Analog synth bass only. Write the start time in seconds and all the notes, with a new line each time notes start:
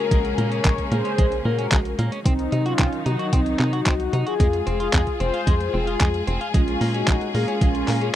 0.11 A#1
0.38 A#2
0.65 A#1
0.92 A#2
1.18 A#1
1.45 A#2
1.72 A#1
1.99 A#2
2.26 C2
2.52 C3
2.79 C2
3.06 C3
3.33 C2
3.60 C3
3.86 C2
4.13 C3
4.40 F2
4.67 F1
4.93 F2
5.20 F1
5.47 F2
5.74 F1
6.01 F2
6.27 F1
6.54 A#1
6.81 A#2
7.08 A#1
7.35 A#2
7.61 A#1
7.88 A#2